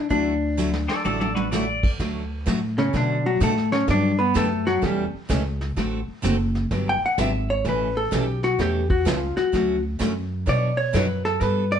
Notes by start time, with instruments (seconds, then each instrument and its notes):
0.10 upright bass D2, steel-string acoustic guitar D3 F#3 A3 E4 F#4, hollow-body jazz guitar D4, brush sweep, kick
0.57 steel-string acoustic guitar D3 F#3 A3 E4 F#4, hi-hat pedal
0.74 snare
0.88 pedal steel guitar A4 D5, snare
1.04 upright bass A1, steel-string acoustic guitar D3 F#3 A3 E4 F#4, pedal steel guitar A4 D5, high tom
1.20 pedal steel guitar A4 D5, high tom
1.35 pedal steel guitar F#4 B4, high tom
1.51 steel-string acoustic guitar D3 F#3 A3 E4 F#4, pedal steel guitar D5, snare, hi-hat pedal
1.83 kick, crash
1.99 upright bass D2, steel-string acoustic guitar D3 F#3 A3 D4 F#4, brush sweep, kick, snare
2.46 upright bass A2, steel-string acoustic guitar D3 F#3 A3 D4 F#4, kick, snare, hi-hat pedal
2.78 hollow-body jazz guitar C#3 C#4, snare
2.93 steel-string acoustic guitar B2 F#3 A3 D4 F#4, upright bass B2, hollow-body jazz guitar D3 D4, brush sweep, kick, snare
3.26 hollow-body jazz guitar F#3 F#4
3.40 upright bass A2, steel-string acoustic guitar B2 F#3 A3 D4 F#4, hollow-body jazz guitar A3 A4, kick, snare, hi-hat pedal
3.57 snare
3.72 hollow-body jazz guitar C#4 C#5, snare
3.88 upright bass G2, steel-string acoustic guitar D3 F#3 B3 D4 G4, hollow-body jazz guitar D4 D5, brush sweep, kick, snare
4.19 hollow-body jazz guitar B3 B4
4.34 upright bass F#2, steel-string acoustic guitar D3 F#3 B3 D4 G4, hollow-body jazz guitar A3 A4, kick, snare, hi-hat pedal
4.67 hollow-body jazz guitar F#3 F#4, snare
4.81 upright bass E2, steel-string acoustic guitar B2 E3 A3 C#4 A4, brush sweep, kick, snare
4.86 hollow-body jazz guitar G3 G4
5.13 muted upright bass stroke
5.29 upright bass C#2, steel-string acoustic guitar B2 E3 A3 C#4 A4, kick, snare, hi-hat pedal
5.61 snare
5.76 upright bass A1, steel-string acoustic guitar D3 A3 C4 F#4 A4, brush sweep, kick, snare
6.08 muted upright bass stroke
6.22 upright bass F#1, steel-string acoustic guitar D3 A3 C4 F#4 A4, kick, snare, hi-hat pedal
6.55 snare
6.71 upright bass G1, steel-string acoustic guitar D3 F#3 B3 D4 G4, brush sweep, kick, snare
6.89 hollow-body jazz guitar G5
7.02 hollow-body jazz guitar F#5, muted upright bass stroke
7.18 upright bass G#1, steel-string acoustic guitar D3 F#3 B3 D4 G4, hollow-body jazz guitar E5, kick, snare, hi-hat pedal
7.50 hollow-body jazz guitar C#5
7.64 upright bass A1, steel-string acoustic guitar B2 E3 A3 C#4 A4, brush sweep, kick, snare
7.69 hollow-body jazz guitar B4
7.97 hollow-body jazz guitar A4
8.11 upright bass B1, steel-string acoustic guitar B2 E3 A3 C#4 A4, hollow-body jazz guitar G4, kick, snare, hi-hat pedal
8.43 hollow-body jazz guitar F#4, snare
8.59 upright bass E2, steel-string acoustic guitar B2 E3 A3 C#4 A4, hollow-body jazz guitar G4, brush sweep, kick, snare
8.90 hollow-body jazz guitar F#4, kick
9.05 upright bass C#2, steel-string acoustic guitar B2 E3 A3 C#4 A4, hollow-body jazz guitar F4, kick, snare, hi-hat pedal
9.36 hollow-body jazz guitar F#4, muted upright bass stroke, snare
9.52 upright bass D2, steel-string acoustic guitar D3 F#3 A3 C#4 F#4, brush sweep, kick, snare
9.99 upright bass F#2, steel-string acoustic guitar D3 F#3 A3 C#4 F#4, kick, snare, hi-hat pedal
10.46 steel-string acoustic guitar B2 F#3 B3 D4 F#4 C#5, upright bass B2, hollow-body jazz guitar D5, brush sweep, kick, snare
10.77 hollow-body jazz guitar C#5
10.93 upright bass F#2, steel-string acoustic guitar B2 F#3 B3 D4 F#4 C#5, hollow-body jazz guitar B4, kick, snare, hi-hat pedal
11.25 hollow-body jazz guitar A4, snare
11.41 upright bass G2, steel-string acoustic guitar G3 B3 D4 A4, hollow-body jazz guitar B4, brush sweep, kick, snare
11.72 hollow-body jazz guitar D5